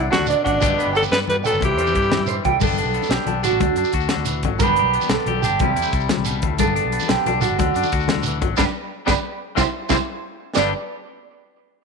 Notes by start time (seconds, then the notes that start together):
Already playing: D3
0.10 D3 D4 F#4, snare, closed hi-hat, high conga, low conga
0.19 D2
0.26 B2 D4 D5, closed hi-hat, shekere
0.44 A1 B2 D4 F#4 F#5, kick, closed hi-hat, low conga
0.59 G1 G2 D3 B3 D4 G4, kick, closed hi-hat, high conga, shekere
0.70 low conga
0.78 B3 B4, closed hi-hat, shekere
0.86 G1
0.93 F#3 A4 G5, closed hi-hat, low conga
1.02 low conga, shekere
1.11 G2 G3 B4, snare, closed hi-hat, high conga
1.19 low conga, shekere
1.27 G2 G3 B4, closed hi-hat, low conga
1.44 F#3 B3 A4 G5, closed hi-hat, shekere
1.53 G1, shekere
1.61 C2 C3 E3 E4 G4, kick, closed hi-hat, high conga, low conga
1.78 E2 G3 C5, closed hi-hat
1.86 low conga, shekere
1.95 G2 E4, kick, closed hi-hat
2.02 shekere
2.10 E3, snare, closed hi-hat, high conga, low conga
2.19 G2
2.27 C5, closed hi-hat, low conga, shekere
2.45 C2 G3 G5, kick, closed hi-hat, low conga
2.60 G1 G2 B3 D4 A4, kick, crash, high conga, shekere
2.69 low conga
2.78 D4, closed hi-hat
2.84 B1
2.94 B3, closed hi-hat
3.02 low conga, shekere
3.09 B1 D3 G4, snare, closed hi-hat, high conga
3.19 low conga
3.26 B1 D4, closed hi-hat, low conga
3.36 low conga
3.43 D4 F#4, snare, closed hi-hat, shekere
3.51 A1
3.59 D2 D3 D4, kick, closed hi-hat, high conga, low conga
3.75 F#2 D4, closed hi-hat, shekere
3.84 shekere
3.92 D2 F#4, kick, closed hi-hat, shekere
4.00 shekere
4.09 D3, snare, closed hi-hat, high conga, low conga
4.16 D2
4.25 E3, closed hi-hat, shekere
4.43 G#1 F#3, kick, closed hi-hat, low conga
4.52 low conga
4.59 G1 G2 B3 D4 G4 B4, kick, closed hi-hat, high conga, shekere
4.69 low conga
4.76 G4, closed hi-hat
4.82 B1
4.94 B3, closed hi-hat
5.01 low conga, shekere
5.09 B1 D3 A4, snare, closed hi-hat, high conga
5.20 low conga
5.26 B1 G4, closed hi-hat, low conga
5.36 low conga
5.42 D4 G4, snare, closed hi-hat, shekere
5.50 G1
5.59 C2 C3 G3 E4, kick, closed hi-hat, high conga, low conga
5.75 E2 E4, closed hi-hat, shekere
5.82 low conga, shekere
5.92 C2 G3, kick, closed hi-hat, low conga, shekere
6.00 shekere
6.09 C3, snare, closed hi-hat, high conga, low conga
6.17 C2
6.25 B2, closed hi-hat, shekere
6.35 low conga
6.42 D2 A2, kick, closed hi-hat, low conga
6.51 low conga
6.58 G1 G2 B3 D4 A4, kick, closed hi-hat, high conga, shekere
6.67 low conga
6.76 D4, closed hi-hat
6.85 B1
6.92 B3, closed hi-hat
7.00 low conga, shekere
7.08 B1 D3 G4, snare, closed hi-hat, high conga
7.19 low conga
7.26 B1 D4, closed hi-hat, low conga
7.35 low conga
7.41 D4 F#4, snare, closed hi-hat, shekere
7.50 G1
7.59 D2 D3 D4, kick, closed hi-hat, high conga, low conga
7.74 F#2 D4, closed hi-hat, shekere
7.83 low conga, shekere
7.92 D2 F#4, kick, closed hi-hat, low conga, shekere
8.00 shekere
8.08 D3, snare, closed hi-hat, high conga, low conga
8.15 D2
8.23 E3, closed hi-hat, shekere
8.34 low conga
8.41 G#1 F#3, kick, closed hi-hat, low conga
8.57 G1 G3 B3 D4 G4 B4, kick, snare, high conga, shekere
9.06 G1 G3 B3 D4 G4 B4, kick, snare, high conga, shekere
9.55 C2 E3 G3 C4 E4 G4 C5, kick, snare, high conga, shekere
9.89 C2 E3 G3 C4 E4 G4 C5, kick, snare, high conga, shekere
10.55 G1 G2 D3 B3 D4 G4 B4 D5, snare, high conga, shekere
10.59 G4